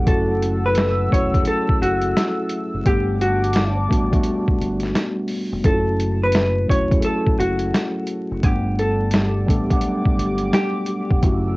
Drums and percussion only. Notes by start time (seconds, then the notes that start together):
0.07 kick, closed hi-hat
0.42 closed hi-hat
0.75 snare, closed hi-hat
1.12 kick, closed hi-hat
1.34 kick, closed hi-hat
1.45 closed hi-hat
1.69 kick
1.83 closed hi-hat
2.02 closed hi-hat
2.17 snare, closed hi-hat
2.49 closed hi-hat
2.86 kick, closed hi-hat
3.21 closed hi-hat
3.44 closed hi-hat
3.53 snare, closed hi-hat
3.91 kick, closed hi-hat
4.13 kick, closed hi-hat
4.23 closed hi-hat
4.48 kick
4.61 closed hi-hat
4.80 snare, closed hi-hat
4.95 snare, closed hi-hat
5.28 open hi-hat
5.64 kick, closed hi-hat
6.00 closed hi-hat
6.32 snare, closed hi-hat
6.70 kick, closed hi-hat
6.92 kick, closed hi-hat
7.02 closed hi-hat
7.27 kick
7.40 closed hi-hat
7.59 closed hi-hat
7.74 snare, closed hi-hat
8.07 closed hi-hat
8.43 kick, closed hi-hat
8.79 closed hi-hat
9.11 snare, closed hi-hat
9.49 kick, closed hi-hat
9.71 kick, closed hi-hat
9.81 closed hi-hat
10.06 kick
10.19 closed hi-hat
10.38 closed hi-hat
10.53 snare, closed hi-hat
10.86 closed hi-hat
11.11 kick
11.23 kick, closed hi-hat